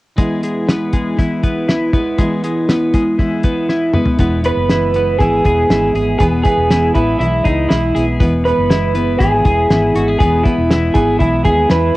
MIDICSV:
0, 0, Header, 1, 6, 480
1, 0, Start_track
1, 0, Key_signature, 4, "major"
1, 0, Tempo, 501253
1, 173, Time_signature, 4, 2, 24, 8
1, 11460, End_track
2, 0, Start_track
2, 0, Title_t, "Clean electric guitar"
2, 0, Program_c, 0, 27
2, 4268, Note_on_c, 0, 71, 91
2, 4963, Note_off_c, 0, 71, 0
2, 4967, Note_on_c, 0, 68, 87
2, 5915, Note_off_c, 0, 68, 0
2, 5926, Note_on_c, 0, 68, 94
2, 5993, Note_off_c, 0, 68, 0
2, 6163, Note_on_c, 0, 68, 85
2, 6647, Note_off_c, 0, 68, 0
2, 6651, Note_on_c, 0, 64, 69
2, 6876, Note_off_c, 0, 64, 0
2, 6888, Note_on_c, 0, 64, 77
2, 7127, Note_on_c, 0, 63, 67
2, 7140, Note_off_c, 0, 64, 0
2, 7364, Note_on_c, 0, 64, 63
2, 7379, Note_off_c, 0, 63, 0
2, 7704, Note_off_c, 0, 64, 0
2, 8092, Note_on_c, 0, 71, 95
2, 8774, Note_off_c, 0, 71, 0
2, 8796, Note_on_c, 0, 68, 90
2, 9742, Note_off_c, 0, 68, 0
2, 9754, Note_on_c, 0, 68, 83
2, 9985, Note_off_c, 0, 68, 0
2, 9991, Note_on_c, 0, 64, 83
2, 10476, Note_on_c, 0, 68, 72
2, 10495, Note_off_c, 0, 64, 0
2, 10714, Note_off_c, 0, 68, 0
2, 10718, Note_on_c, 0, 64, 78
2, 10957, Note_off_c, 0, 64, 0
2, 10961, Note_on_c, 0, 68, 73
2, 11211, Note_off_c, 0, 68, 0
2, 11215, Note_on_c, 0, 71, 68
2, 11460, Note_off_c, 0, 71, 0
2, 11460, End_track
3, 0, Start_track
3, 0, Title_t, "Clean electric guitar"
3, 0, Program_c, 1, 27
3, 420, Note_on_c, 1, 56, 45
3, 658, Note_on_c, 1, 59, 50
3, 891, Note_off_c, 1, 56, 0
3, 895, Note_on_c, 1, 56, 52
3, 1369, Note_off_c, 1, 59, 0
3, 1373, Note_on_c, 1, 59, 52
3, 1612, Note_on_c, 1, 64, 57
3, 1849, Note_off_c, 1, 59, 0
3, 2088, Note_off_c, 1, 56, 0
3, 2335, Note_on_c, 1, 56, 50
3, 2575, Note_on_c, 1, 59, 52
3, 2812, Note_off_c, 1, 56, 0
3, 2816, Note_on_c, 1, 56, 56
3, 3047, Note_off_c, 1, 64, 0
3, 3289, Note_off_c, 1, 59, 0
3, 3293, Note_on_c, 1, 59, 51
3, 3535, Note_on_c, 1, 64, 54
3, 3770, Note_off_c, 1, 59, 0
3, 4500, Note_off_c, 1, 64, 0
3, 5228, Note_on_c, 1, 68, 61
3, 5701, Note_off_c, 1, 68, 0
3, 5705, Note_on_c, 1, 68, 61
3, 6168, Note_off_c, 1, 56, 0
3, 7132, Note_off_c, 1, 68, 0
3, 7136, Note_on_c, 1, 68, 57
3, 7611, Note_off_c, 1, 68, 0
3, 7614, Note_on_c, 1, 68, 57
3, 9048, Note_off_c, 1, 68, 0
3, 9052, Note_on_c, 1, 68, 59
3, 9528, Note_off_c, 1, 68, 0
3, 9532, Note_on_c, 1, 66, 58
3, 9652, Note_off_c, 1, 66, 0
3, 9652, Note_on_c, 1, 68, 50
3, 10958, Note_off_c, 1, 68, 0
3, 10969, Note_on_c, 1, 68, 56
3, 11445, Note_off_c, 1, 68, 0
3, 11460, End_track
4, 0, Start_track
4, 0, Title_t, "Steel-string acoustic guitar"
4, 0, Program_c, 2, 25
4, 156, Note_on_c, 2, 52, 67
4, 174, Note_on_c, 2, 56, 72
4, 185, Note_on_c, 2, 59, 74
4, 199, Note_on_c, 2, 64, 82
4, 1116, Note_off_c, 2, 52, 0
4, 1120, Note_on_c, 2, 52, 54
4, 1129, Note_off_c, 2, 56, 0
4, 1133, Note_on_c, 2, 56, 58
4, 1136, Note_off_c, 2, 59, 0
4, 1140, Note_on_c, 2, 59, 60
4, 1144, Note_off_c, 2, 64, 0
4, 1148, Note_on_c, 2, 64, 55
4, 1843, Note_off_c, 2, 64, 0
4, 1847, Note_on_c, 2, 64, 53
4, 1861, Note_off_c, 2, 59, 0
4, 1865, Note_on_c, 2, 59, 48
4, 1873, Note_off_c, 2, 56, 0
4, 1877, Note_on_c, 2, 56, 42
4, 2079, Note_off_c, 2, 52, 0
4, 2083, Note_on_c, 2, 52, 76
4, 2092, Note_off_c, 2, 56, 0
4, 2094, Note_off_c, 2, 64, 0
4, 2103, Note_off_c, 2, 59, 0
4, 2103, Note_on_c, 2, 56, 74
4, 2117, Note_on_c, 2, 59, 79
4, 2129, Note_on_c, 2, 64, 82
4, 3043, Note_off_c, 2, 52, 0
4, 3047, Note_on_c, 2, 52, 58
4, 3054, Note_off_c, 2, 56, 0
4, 3058, Note_on_c, 2, 56, 54
4, 3062, Note_off_c, 2, 59, 0
4, 3066, Note_on_c, 2, 59, 63
4, 3068, Note_off_c, 2, 64, 0
4, 3072, Note_on_c, 2, 64, 62
4, 3769, Note_off_c, 2, 64, 0
4, 3773, Note_on_c, 2, 64, 54
4, 3784, Note_off_c, 2, 59, 0
4, 3788, Note_on_c, 2, 59, 47
4, 3798, Note_off_c, 2, 56, 0
4, 3801, Note_on_c, 2, 56, 43
4, 4003, Note_off_c, 2, 56, 0
4, 4007, Note_off_c, 2, 52, 0
4, 4010, Note_on_c, 2, 52, 75
4, 4012, Note_off_c, 2, 59, 0
4, 4015, Note_on_c, 2, 56, 81
4, 4018, Note_off_c, 2, 64, 0
4, 4023, Note_on_c, 2, 59, 79
4, 4029, Note_on_c, 2, 64, 85
4, 4235, Note_off_c, 2, 64, 0
4, 4247, Note_on_c, 2, 64, 47
4, 4250, Note_off_c, 2, 59, 0
4, 4256, Note_off_c, 2, 52, 0
4, 4258, Note_off_c, 2, 56, 0
4, 4262, Note_on_c, 2, 59, 44
4, 4276, Note_on_c, 2, 56, 39
4, 4491, Note_off_c, 2, 56, 0
4, 4493, Note_on_c, 2, 52, 69
4, 4494, Note_off_c, 2, 64, 0
4, 4495, Note_off_c, 2, 59, 0
4, 4502, Note_on_c, 2, 56, 62
4, 4507, Note_on_c, 2, 59, 68
4, 4514, Note_on_c, 2, 64, 65
4, 4719, Note_off_c, 2, 64, 0
4, 4731, Note_on_c, 2, 64, 46
4, 4737, Note_off_c, 2, 52, 0
4, 4738, Note_off_c, 2, 59, 0
4, 4742, Note_off_c, 2, 56, 0
4, 4749, Note_on_c, 2, 59, 43
4, 4762, Note_on_c, 2, 56, 41
4, 4970, Note_on_c, 2, 52, 53
4, 4971, Note_off_c, 2, 56, 0
4, 4976, Note_off_c, 2, 64, 0
4, 4981, Note_off_c, 2, 59, 0
4, 4983, Note_on_c, 2, 56, 53
4, 4993, Note_on_c, 2, 59, 58
4, 5000, Note_on_c, 2, 64, 55
4, 5208, Note_off_c, 2, 64, 0
4, 5215, Note_off_c, 2, 52, 0
4, 5219, Note_on_c, 2, 64, 48
4, 5222, Note_off_c, 2, 56, 0
4, 5224, Note_off_c, 2, 59, 0
4, 5236, Note_on_c, 2, 59, 47
4, 5245, Note_on_c, 2, 56, 40
4, 5450, Note_off_c, 2, 56, 0
4, 5453, Note_on_c, 2, 52, 63
4, 5454, Note_off_c, 2, 59, 0
4, 5460, Note_off_c, 2, 64, 0
4, 5462, Note_on_c, 2, 56, 65
4, 5465, Note_on_c, 2, 59, 70
4, 5474, Note_on_c, 2, 64, 77
4, 5680, Note_off_c, 2, 64, 0
4, 5691, Note_on_c, 2, 64, 48
4, 5697, Note_off_c, 2, 52, 0
4, 5698, Note_off_c, 2, 59, 0
4, 5701, Note_off_c, 2, 56, 0
4, 5709, Note_on_c, 2, 59, 50
4, 5723, Note_on_c, 2, 56, 47
4, 5935, Note_off_c, 2, 64, 0
4, 5940, Note_off_c, 2, 56, 0
4, 5944, Note_off_c, 2, 59, 0
4, 5945, Note_on_c, 2, 52, 69
4, 5951, Note_on_c, 2, 56, 72
4, 5955, Note_on_c, 2, 59, 74
4, 5964, Note_on_c, 2, 64, 82
4, 6167, Note_off_c, 2, 64, 0
4, 6178, Note_on_c, 2, 64, 51
4, 6181, Note_off_c, 2, 59, 0
4, 6182, Note_off_c, 2, 52, 0
4, 6185, Note_off_c, 2, 56, 0
4, 6193, Note_on_c, 2, 59, 40
4, 6209, Note_on_c, 2, 56, 39
4, 6414, Note_off_c, 2, 56, 0
4, 6419, Note_off_c, 2, 59, 0
4, 6419, Note_off_c, 2, 64, 0
4, 6419, Note_on_c, 2, 52, 58
4, 6425, Note_on_c, 2, 56, 68
4, 6431, Note_on_c, 2, 59, 69
4, 6437, Note_on_c, 2, 64, 70
4, 6647, Note_off_c, 2, 64, 0
4, 6658, Note_off_c, 2, 52, 0
4, 6658, Note_on_c, 2, 64, 47
4, 6662, Note_off_c, 2, 56, 0
4, 6665, Note_off_c, 2, 59, 0
4, 6675, Note_on_c, 2, 59, 43
4, 6687, Note_on_c, 2, 56, 40
4, 6898, Note_off_c, 2, 64, 0
4, 6900, Note_on_c, 2, 52, 52
4, 6904, Note_off_c, 2, 56, 0
4, 6906, Note_off_c, 2, 59, 0
4, 6916, Note_on_c, 2, 56, 57
4, 6924, Note_on_c, 2, 59, 50
4, 6930, Note_on_c, 2, 64, 61
4, 7130, Note_off_c, 2, 64, 0
4, 7138, Note_off_c, 2, 52, 0
4, 7141, Note_on_c, 2, 64, 51
4, 7146, Note_off_c, 2, 56, 0
4, 7146, Note_off_c, 2, 59, 0
4, 7157, Note_on_c, 2, 59, 47
4, 7167, Note_on_c, 2, 56, 41
4, 7374, Note_off_c, 2, 56, 0
4, 7376, Note_on_c, 2, 52, 67
4, 7379, Note_off_c, 2, 59, 0
4, 7379, Note_off_c, 2, 64, 0
4, 7386, Note_on_c, 2, 56, 67
4, 7390, Note_on_c, 2, 59, 62
4, 7394, Note_on_c, 2, 64, 71
4, 7608, Note_off_c, 2, 64, 0
4, 7616, Note_off_c, 2, 52, 0
4, 7619, Note_on_c, 2, 64, 47
4, 7621, Note_off_c, 2, 56, 0
4, 7623, Note_off_c, 2, 59, 0
4, 7636, Note_on_c, 2, 59, 44
4, 7650, Note_on_c, 2, 56, 40
4, 7852, Note_off_c, 2, 56, 0
4, 7854, Note_on_c, 2, 52, 73
4, 7857, Note_off_c, 2, 64, 0
4, 7860, Note_off_c, 2, 59, 0
4, 7864, Note_on_c, 2, 56, 83
4, 7872, Note_on_c, 2, 59, 83
4, 7876, Note_on_c, 2, 64, 85
4, 8085, Note_off_c, 2, 64, 0
4, 8094, Note_off_c, 2, 52, 0
4, 8097, Note_on_c, 2, 64, 52
4, 8099, Note_off_c, 2, 56, 0
4, 8100, Note_off_c, 2, 59, 0
4, 8111, Note_on_c, 2, 59, 42
4, 8124, Note_on_c, 2, 56, 37
4, 8334, Note_off_c, 2, 56, 0
4, 8336, Note_off_c, 2, 64, 0
4, 8341, Note_on_c, 2, 52, 67
4, 8343, Note_off_c, 2, 59, 0
4, 8345, Note_on_c, 2, 56, 72
4, 8355, Note_on_c, 2, 59, 65
4, 8360, Note_on_c, 2, 64, 78
4, 8554, Note_off_c, 2, 64, 0
4, 8565, Note_on_c, 2, 64, 48
4, 8571, Note_off_c, 2, 59, 0
4, 8577, Note_off_c, 2, 52, 0
4, 8580, Note_off_c, 2, 56, 0
4, 8582, Note_on_c, 2, 59, 41
4, 8596, Note_on_c, 2, 56, 41
4, 8800, Note_on_c, 2, 52, 56
4, 8802, Note_off_c, 2, 56, 0
4, 8810, Note_off_c, 2, 64, 0
4, 8812, Note_off_c, 2, 59, 0
4, 8814, Note_on_c, 2, 56, 52
4, 8823, Note_on_c, 2, 59, 58
4, 8833, Note_on_c, 2, 64, 62
4, 9037, Note_off_c, 2, 64, 0
4, 9047, Note_off_c, 2, 52, 0
4, 9049, Note_on_c, 2, 64, 52
4, 9053, Note_off_c, 2, 56, 0
4, 9055, Note_off_c, 2, 59, 0
4, 9066, Note_on_c, 2, 59, 46
4, 9076, Note_on_c, 2, 56, 42
4, 9285, Note_off_c, 2, 56, 0
4, 9286, Note_on_c, 2, 52, 60
4, 9290, Note_off_c, 2, 59, 0
4, 9291, Note_off_c, 2, 64, 0
4, 9296, Note_on_c, 2, 56, 64
4, 9301, Note_on_c, 2, 59, 71
4, 9305, Note_on_c, 2, 64, 73
4, 9514, Note_off_c, 2, 64, 0
4, 9525, Note_on_c, 2, 64, 56
4, 9529, Note_off_c, 2, 52, 0
4, 9534, Note_off_c, 2, 56, 0
4, 9534, Note_off_c, 2, 59, 0
4, 9545, Note_on_c, 2, 59, 48
4, 9556, Note_on_c, 2, 56, 46
4, 9765, Note_off_c, 2, 56, 0
4, 9768, Note_off_c, 2, 64, 0
4, 9768, Note_on_c, 2, 52, 67
4, 9771, Note_off_c, 2, 59, 0
4, 9776, Note_on_c, 2, 56, 71
4, 9782, Note_on_c, 2, 59, 76
4, 9790, Note_on_c, 2, 64, 75
4, 9987, Note_off_c, 2, 64, 0
4, 9999, Note_on_c, 2, 64, 48
4, 10005, Note_off_c, 2, 59, 0
4, 10009, Note_off_c, 2, 52, 0
4, 10014, Note_off_c, 2, 56, 0
4, 10016, Note_on_c, 2, 59, 47
4, 10031, Note_on_c, 2, 56, 38
4, 10245, Note_off_c, 2, 56, 0
4, 10245, Note_off_c, 2, 64, 0
4, 10247, Note_on_c, 2, 52, 70
4, 10251, Note_off_c, 2, 59, 0
4, 10257, Note_on_c, 2, 56, 63
4, 10262, Note_on_c, 2, 59, 72
4, 10269, Note_on_c, 2, 64, 73
4, 10483, Note_off_c, 2, 64, 0
4, 10489, Note_off_c, 2, 52, 0
4, 10494, Note_off_c, 2, 56, 0
4, 10495, Note_on_c, 2, 64, 52
4, 10496, Note_off_c, 2, 59, 0
4, 10509, Note_on_c, 2, 59, 45
4, 10520, Note_on_c, 2, 56, 36
4, 10726, Note_on_c, 2, 52, 50
4, 10728, Note_off_c, 2, 56, 0
4, 10732, Note_off_c, 2, 64, 0
4, 10739, Note_off_c, 2, 59, 0
4, 10739, Note_on_c, 2, 56, 55
4, 10750, Note_on_c, 2, 59, 53
4, 10756, Note_on_c, 2, 64, 57
4, 10959, Note_off_c, 2, 64, 0
4, 10968, Note_off_c, 2, 52, 0
4, 10971, Note_on_c, 2, 64, 49
4, 10973, Note_off_c, 2, 59, 0
4, 10975, Note_off_c, 2, 56, 0
4, 10984, Note_on_c, 2, 59, 47
4, 10999, Note_on_c, 2, 56, 41
4, 11202, Note_off_c, 2, 56, 0
4, 11205, Note_on_c, 2, 52, 64
4, 11207, Note_off_c, 2, 59, 0
4, 11210, Note_off_c, 2, 64, 0
4, 11213, Note_on_c, 2, 56, 63
4, 11218, Note_on_c, 2, 59, 67
4, 11222, Note_on_c, 2, 64, 74
4, 11435, Note_off_c, 2, 64, 0
4, 11447, Note_off_c, 2, 52, 0
4, 11451, Note_off_c, 2, 56, 0
4, 11454, Note_off_c, 2, 59, 0
4, 11460, End_track
5, 0, Start_track
5, 0, Title_t, "Fingered electric bass"
5, 0, Program_c, 3, 33
5, 4011, Note_on_c, 3, 28, 93
5, 4322, Note_off_c, 3, 28, 0
5, 4374, Note_on_c, 3, 30, 72
5, 4980, Note_off_c, 3, 30, 0
5, 4980, Note_on_c, 3, 32, 78
5, 5185, Note_off_c, 3, 32, 0
5, 5220, Note_on_c, 3, 28, 82
5, 5424, Note_off_c, 3, 28, 0
5, 5453, Note_on_c, 3, 32, 73
5, 5660, Note_off_c, 3, 32, 0
5, 5693, Note_on_c, 3, 32, 79
5, 5900, Note_off_c, 3, 32, 0
5, 5939, Note_on_c, 3, 28, 89
5, 6143, Note_off_c, 3, 28, 0
5, 6295, Note_on_c, 3, 28, 83
5, 6602, Note_off_c, 3, 28, 0
5, 6657, Note_on_c, 3, 33, 75
5, 6861, Note_off_c, 3, 33, 0
5, 6897, Note_on_c, 3, 35, 83
5, 7101, Note_off_c, 3, 35, 0
5, 7136, Note_on_c, 3, 37, 76
5, 7340, Note_off_c, 3, 37, 0
5, 7382, Note_on_c, 3, 35, 73
5, 7584, Note_off_c, 3, 35, 0
5, 7621, Note_on_c, 3, 35, 70
5, 7823, Note_off_c, 3, 35, 0
5, 7855, Note_on_c, 3, 28, 98
5, 8161, Note_off_c, 3, 28, 0
5, 8216, Note_on_c, 3, 30, 78
5, 8785, Note_off_c, 3, 30, 0
5, 8810, Note_on_c, 3, 32, 94
5, 9015, Note_off_c, 3, 32, 0
5, 9050, Note_on_c, 3, 28, 73
5, 9255, Note_off_c, 3, 28, 0
5, 9289, Note_on_c, 3, 32, 78
5, 9494, Note_off_c, 3, 32, 0
5, 9526, Note_on_c, 3, 32, 72
5, 9732, Note_off_c, 3, 32, 0
5, 9770, Note_on_c, 3, 28, 97
5, 9975, Note_off_c, 3, 28, 0
5, 10131, Note_on_c, 3, 28, 82
5, 10437, Note_off_c, 3, 28, 0
5, 10489, Note_on_c, 3, 32, 78
5, 10693, Note_off_c, 3, 32, 0
5, 10728, Note_on_c, 3, 35, 84
5, 10933, Note_off_c, 3, 35, 0
5, 10966, Note_on_c, 3, 39, 78
5, 11172, Note_off_c, 3, 39, 0
5, 11206, Note_on_c, 3, 40, 81
5, 11412, Note_off_c, 3, 40, 0
5, 11460, End_track
6, 0, Start_track
6, 0, Title_t, "Drums"
6, 171, Note_on_c, 9, 42, 81
6, 173, Note_on_c, 9, 36, 85
6, 266, Note_off_c, 9, 42, 0
6, 269, Note_off_c, 9, 36, 0
6, 413, Note_on_c, 9, 42, 62
6, 509, Note_off_c, 9, 42, 0
6, 657, Note_on_c, 9, 38, 100
6, 661, Note_on_c, 9, 42, 95
6, 752, Note_off_c, 9, 38, 0
6, 757, Note_off_c, 9, 42, 0
6, 888, Note_on_c, 9, 42, 67
6, 893, Note_on_c, 9, 36, 77
6, 984, Note_off_c, 9, 42, 0
6, 989, Note_off_c, 9, 36, 0
6, 1129, Note_on_c, 9, 38, 30
6, 1136, Note_on_c, 9, 36, 76
6, 1137, Note_on_c, 9, 42, 67
6, 1225, Note_off_c, 9, 38, 0
6, 1232, Note_off_c, 9, 36, 0
6, 1233, Note_off_c, 9, 42, 0
6, 1373, Note_on_c, 9, 42, 53
6, 1375, Note_on_c, 9, 36, 76
6, 1469, Note_off_c, 9, 42, 0
6, 1471, Note_off_c, 9, 36, 0
6, 1617, Note_on_c, 9, 38, 84
6, 1618, Note_on_c, 9, 42, 68
6, 1713, Note_off_c, 9, 38, 0
6, 1714, Note_off_c, 9, 42, 0
6, 1852, Note_on_c, 9, 36, 84
6, 1855, Note_on_c, 9, 42, 57
6, 1948, Note_off_c, 9, 36, 0
6, 1951, Note_off_c, 9, 42, 0
6, 2092, Note_on_c, 9, 42, 85
6, 2094, Note_on_c, 9, 36, 83
6, 2188, Note_off_c, 9, 42, 0
6, 2189, Note_off_c, 9, 36, 0
6, 2334, Note_on_c, 9, 42, 66
6, 2430, Note_off_c, 9, 42, 0
6, 2575, Note_on_c, 9, 38, 95
6, 2579, Note_on_c, 9, 42, 95
6, 2670, Note_off_c, 9, 38, 0
6, 2675, Note_off_c, 9, 42, 0
6, 2811, Note_on_c, 9, 42, 66
6, 2813, Note_on_c, 9, 36, 77
6, 2907, Note_off_c, 9, 42, 0
6, 2909, Note_off_c, 9, 36, 0
6, 3047, Note_on_c, 9, 38, 29
6, 3055, Note_on_c, 9, 36, 80
6, 3055, Note_on_c, 9, 42, 68
6, 3142, Note_off_c, 9, 38, 0
6, 3151, Note_off_c, 9, 36, 0
6, 3151, Note_off_c, 9, 42, 0
6, 3287, Note_on_c, 9, 42, 57
6, 3294, Note_on_c, 9, 36, 83
6, 3383, Note_off_c, 9, 42, 0
6, 3389, Note_off_c, 9, 36, 0
6, 3534, Note_on_c, 9, 38, 44
6, 3630, Note_off_c, 9, 38, 0
6, 3769, Note_on_c, 9, 45, 77
6, 3865, Note_off_c, 9, 45, 0
6, 3885, Note_on_c, 9, 43, 76
6, 3981, Note_off_c, 9, 43, 0
6, 4010, Note_on_c, 9, 42, 82
6, 4014, Note_on_c, 9, 36, 88
6, 4106, Note_off_c, 9, 42, 0
6, 4110, Note_off_c, 9, 36, 0
6, 4252, Note_on_c, 9, 42, 62
6, 4348, Note_off_c, 9, 42, 0
6, 4496, Note_on_c, 9, 38, 94
6, 4501, Note_on_c, 9, 42, 93
6, 4592, Note_off_c, 9, 38, 0
6, 4596, Note_off_c, 9, 42, 0
6, 4731, Note_on_c, 9, 42, 64
6, 4826, Note_off_c, 9, 42, 0
6, 4973, Note_on_c, 9, 38, 29
6, 4981, Note_on_c, 9, 42, 65
6, 4982, Note_on_c, 9, 36, 80
6, 5069, Note_off_c, 9, 38, 0
6, 5077, Note_off_c, 9, 42, 0
6, 5078, Note_off_c, 9, 36, 0
6, 5218, Note_on_c, 9, 42, 59
6, 5222, Note_on_c, 9, 36, 73
6, 5314, Note_off_c, 9, 42, 0
6, 5318, Note_off_c, 9, 36, 0
6, 5462, Note_on_c, 9, 38, 91
6, 5463, Note_on_c, 9, 42, 68
6, 5557, Note_off_c, 9, 38, 0
6, 5559, Note_off_c, 9, 42, 0
6, 5701, Note_on_c, 9, 42, 64
6, 5797, Note_off_c, 9, 42, 0
6, 5938, Note_on_c, 9, 42, 82
6, 5942, Note_on_c, 9, 36, 88
6, 6034, Note_off_c, 9, 42, 0
6, 6037, Note_off_c, 9, 36, 0
6, 6175, Note_on_c, 9, 42, 67
6, 6181, Note_on_c, 9, 36, 79
6, 6271, Note_off_c, 9, 42, 0
6, 6277, Note_off_c, 9, 36, 0
6, 6421, Note_on_c, 9, 38, 100
6, 6426, Note_on_c, 9, 42, 94
6, 6517, Note_off_c, 9, 38, 0
6, 6521, Note_off_c, 9, 42, 0
6, 6655, Note_on_c, 9, 42, 66
6, 6660, Note_on_c, 9, 36, 76
6, 6751, Note_off_c, 9, 42, 0
6, 6756, Note_off_c, 9, 36, 0
6, 6905, Note_on_c, 9, 42, 65
6, 7001, Note_off_c, 9, 42, 0
6, 7138, Note_on_c, 9, 42, 61
6, 7140, Note_on_c, 9, 36, 77
6, 7233, Note_off_c, 9, 42, 0
6, 7236, Note_off_c, 9, 36, 0
6, 7380, Note_on_c, 9, 38, 87
6, 7381, Note_on_c, 9, 42, 71
6, 7475, Note_off_c, 9, 38, 0
6, 7477, Note_off_c, 9, 42, 0
6, 7625, Note_on_c, 9, 42, 64
6, 7720, Note_off_c, 9, 42, 0
6, 7855, Note_on_c, 9, 42, 86
6, 7856, Note_on_c, 9, 36, 97
6, 7951, Note_off_c, 9, 36, 0
6, 7951, Note_off_c, 9, 42, 0
6, 8097, Note_on_c, 9, 42, 66
6, 8193, Note_off_c, 9, 42, 0
6, 8334, Note_on_c, 9, 38, 100
6, 8339, Note_on_c, 9, 42, 101
6, 8430, Note_off_c, 9, 38, 0
6, 8434, Note_off_c, 9, 42, 0
6, 8568, Note_on_c, 9, 42, 65
6, 8664, Note_off_c, 9, 42, 0
6, 8806, Note_on_c, 9, 38, 29
6, 8813, Note_on_c, 9, 36, 82
6, 8814, Note_on_c, 9, 42, 72
6, 8901, Note_off_c, 9, 38, 0
6, 8909, Note_off_c, 9, 36, 0
6, 8909, Note_off_c, 9, 42, 0
6, 9048, Note_on_c, 9, 42, 58
6, 9052, Note_on_c, 9, 36, 86
6, 9144, Note_off_c, 9, 42, 0
6, 9147, Note_off_c, 9, 36, 0
6, 9292, Note_on_c, 9, 38, 84
6, 9293, Note_on_c, 9, 42, 74
6, 9388, Note_off_c, 9, 38, 0
6, 9389, Note_off_c, 9, 42, 0
6, 9532, Note_on_c, 9, 42, 63
6, 9627, Note_off_c, 9, 42, 0
6, 9769, Note_on_c, 9, 42, 84
6, 9770, Note_on_c, 9, 36, 90
6, 9864, Note_off_c, 9, 42, 0
6, 9866, Note_off_c, 9, 36, 0
6, 10010, Note_on_c, 9, 42, 71
6, 10011, Note_on_c, 9, 36, 80
6, 10106, Note_off_c, 9, 42, 0
6, 10107, Note_off_c, 9, 36, 0
6, 10251, Note_on_c, 9, 38, 101
6, 10256, Note_on_c, 9, 42, 97
6, 10347, Note_off_c, 9, 38, 0
6, 10352, Note_off_c, 9, 42, 0
6, 10484, Note_on_c, 9, 42, 69
6, 10488, Note_on_c, 9, 36, 73
6, 10579, Note_off_c, 9, 42, 0
6, 10584, Note_off_c, 9, 36, 0
6, 10728, Note_on_c, 9, 42, 72
6, 10730, Note_on_c, 9, 36, 74
6, 10824, Note_off_c, 9, 42, 0
6, 10826, Note_off_c, 9, 36, 0
6, 10964, Note_on_c, 9, 42, 58
6, 10968, Note_on_c, 9, 36, 81
6, 11059, Note_off_c, 9, 42, 0
6, 11064, Note_off_c, 9, 36, 0
6, 11202, Note_on_c, 9, 38, 86
6, 11203, Note_on_c, 9, 42, 77
6, 11298, Note_off_c, 9, 38, 0
6, 11299, Note_off_c, 9, 42, 0
6, 11460, End_track
0, 0, End_of_file